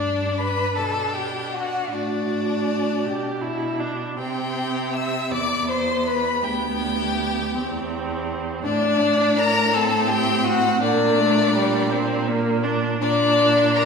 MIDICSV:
0, 0, Header, 1, 5, 480
1, 0, Start_track
1, 0, Key_signature, 1, "major"
1, 0, Tempo, 757576
1, 1213, Time_signature, 6, 3, 24, 8
1, 4081, Tempo, 735294
1, 5518, Key_signature, -2, "minor"
1, 6001, Tempo, 721154
1, 7921, Tempo, 753769
1, 8930, End_track
2, 0, Start_track
2, 0, Title_t, "Violin"
2, 0, Program_c, 0, 40
2, 0, Note_on_c, 0, 74, 94
2, 239, Note_on_c, 0, 83, 100
2, 249, Note_off_c, 0, 74, 0
2, 474, Note_off_c, 0, 83, 0
2, 478, Note_on_c, 0, 81, 91
2, 717, Note_on_c, 0, 79, 89
2, 726, Note_off_c, 0, 81, 0
2, 968, Note_on_c, 0, 78, 100
2, 977, Note_off_c, 0, 79, 0
2, 1213, Note_on_c, 0, 74, 94
2, 1222, Note_off_c, 0, 78, 0
2, 2408, Note_off_c, 0, 74, 0
2, 2650, Note_on_c, 0, 79, 97
2, 3128, Note_on_c, 0, 88, 100
2, 3137, Note_off_c, 0, 79, 0
2, 3365, Note_off_c, 0, 88, 0
2, 3376, Note_on_c, 0, 86, 106
2, 3603, Note_off_c, 0, 86, 0
2, 3612, Note_on_c, 0, 84, 102
2, 3850, Note_on_c, 0, 83, 109
2, 3860, Note_off_c, 0, 84, 0
2, 4082, Note_on_c, 0, 79, 109
2, 4091, Note_off_c, 0, 83, 0
2, 5279, Note_off_c, 0, 79, 0
2, 5522, Note_on_c, 0, 74, 119
2, 6005, Note_on_c, 0, 82, 127
2, 6015, Note_off_c, 0, 74, 0
2, 6248, Note_on_c, 0, 81, 113
2, 6258, Note_off_c, 0, 82, 0
2, 6485, Note_on_c, 0, 79, 127
2, 6495, Note_off_c, 0, 81, 0
2, 6724, Note_on_c, 0, 78, 127
2, 6734, Note_off_c, 0, 79, 0
2, 6957, Note_off_c, 0, 78, 0
2, 6961, Note_on_c, 0, 74, 127
2, 8134, Note_off_c, 0, 74, 0
2, 8397, Note_on_c, 0, 74, 127
2, 8873, Note_on_c, 0, 82, 123
2, 8883, Note_off_c, 0, 74, 0
2, 8930, Note_off_c, 0, 82, 0
2, 8930, End_track
3, 0, Start_track
3, 0, Title_t, "Violin"
3, 0, Program_c, 1, 40
3, 0, Note_on_c, 1, 62, 79
3, 245, Note_on_c, 1, 71, 91
3, 255, Note_off_c, 1, 62, 0
3, 480, Note_on_c, 1, 69, 92
3, 489, Note_off_c, 1, 71, 0
3, 727, Note_on_c, 1, 67, 82
3, 736, Note_off_c, 1, 69, 0
3, 980, Note_on_c, 1, 66, 83
3, 989, Note_off_c, 1, 67, 0
3, 1210, Note_off_c, 1, 66, 0
3, 1213, Note_on_c, 1, 62, 85
3, 2384, Note_off_c, 1, 62, 0
3, 2647, Note_on_c, 1, 67, 82
3, 3132, Note_on_c, 1, 76, 94
3, 3141, Note_off_c, 1, 67, 0
3, 3369, Note_on_c, 1, 74, 98
3, 3379, Note_off_c, 1, 76, 0
3, 3601, Note_on_c, 1, 72, 96
3, 3611, Note_off_c, 1, 74, 0
3, 3842, Note_on_c, 1, 71, 89
3, 3852, Note_off_c, 1, 72, 0
3, 4073, Note_on_c, 1, 67, 93
3, 4082, Note_off_c, 1, 71, 0
3, 5274, Note_off_c, 1, 67, 0
3, 5512, Note_on_c, 1, 62, 104
3, 5996, Note_on_c, 1, 70, 121
3, 6006, Note_off_c, 1, 62, 0
3, 6235, Note_on_c, 1, 69, 110
3, 6245, Note_off_c, 1, 70, 0
3, 6469, Note_on_c, 1, 67, 114
3, 6479, Note_off_c, 1, 69, 0
3, 6707, Note_on_c, 1, 66, 115
3, 6717, Note_off_c, 1, 67, 0
3, 6950, Note_off_c, 1, 66, 0
3, 6954, Note_on_c, 1, 62, 112
3, 8130, Note_off_c, 1, 62, 0
3, 8393, Note_on_c, 1, 62, 113
3, 8874, Note_on_c, 1, 70, 107
3, 8884, Note_off_c, 1, 62, 0
3, 8930, Note_off_c, 1, 70, 0
3, 8930, End_track
4, 0, Start_track
4, 0, Title_t, "Viola"
4, 0, Program_c, 2, 41
4, 0, Note_on_c, 2, 62, 66
4, 460, Note_off_c, 2, 62, 0
4, 486, Note_on_c, 2, 62, 65
4, 1217, Note_on_c, 2, 66, 62
4, 1226, Note_off_c, 2, 62, 0
4, 1925, Note_on_c, 2, 67, 70
4, 1934, Note_off_c, 2, 66, 0
4, 2160, Note_on_c, 2, 64, 76
4, 2170, Note_off_c, 2, 67, 0
4, 2405, Note_on_c, 2, 62, 70
4, 2414, Note_off_c, 2, 64, 0
4, 2642, Note_off_c, 2, 62, 0
4, 2646, Note_on_c, 2, 60, 71
4, 3360, Note_on_c, 2, 59, 71
4, 3370, Note_off_c, 2, 60, 0
4, 4073, Note_off_c, 2, 59, 0
4, 4077, Note_on_c, 2, 59, 75
4, 4803, Note_on_c, 2, 60, 76
4, 4813, Note_off_c, 2, 59, 0
4, 5519, Note_off_c, 2, 60, 0
4, 5523, Note_on_c, 2, 62, 89
4, 6236, Note_on_c, 2, 60, 86
4, 6246, Note_off_c, 2, 62, 0
4, 6952, Note_off_c, 2, 60, 0
4, 6956, Note_on_c, 2, 58, 99
4, 7193, Note_on_c, 2, 57, 103
4, 7203, Note_off_c, 2, 58, 0
4, 7434, Note_off_c, 2, 57, 0
4, 7439, Note_on_c, 2, 55, 94
4, 7675, Note_on_c, 2, 60, 93
4, 7685, Note_off_c, 2, 55, 0
4, 7923, Note_on_c, 2, 58, 106
4, 7933, Note_off_c, 2, 60, 0
4, 8153, Note_on_c, 2, 62, 94
4, 8163, Note_off_c, 2, 58, 0
4, 8392, Note_off_c, 2, 62, 0
4, 8396, Note_on_c, 2, 62, 91
4, 8930, Note_off_c, 2, 62, 0
4, 8930, End_track
5, 0, Start_track
5, 0, Title_t, "Cello"
5, 0, Program_c, 3, 42
5, 0, Note_on_c, 3, 43, 76
5, 491, Note_on_c, 3, 47, 65
5, 501, Note_off_c, 3, 43, 0
5, 1212, Note_off_c, 3, 47, 0
5, 1216, Note_on_c, 3, 45, 69
5, 1928, Note_on_c, 3, 47, 72
5, 1938, Note_off_c, 3, 45, 0
5, 2646, Note_off_c, 3, 47, 0
5, 2649, Note_on_c, 3, 48, 77
5, 3363, Note_on_c, 3, 40, 72
5, 3372, Note_off_c, 3, 48, 0
5, 4074, Note_on_c, 3, 38, 84
5, 4083, Note_off_c, 3, 40, 0
5, 4798, Note_on_c, 3, 40, 91
5, 4808, Note_off_c, 3, 38, 0
5, 5515, Note_off_c, 3, 40, 0
5, 5519, Note_on_c, 3, 45, 100
5, 6933, Note_off_c, 3, 45, 0
5, 6964, Note_on_c, 3, 46, 102
5, 8370, Note_off_c, 3, 46, 0
5, 8392, Note_on_c, 3, 46, 101
5, 8930, Note_off_c, 3, 46, 0
5, 8930, End_track
0, 0, End_of_file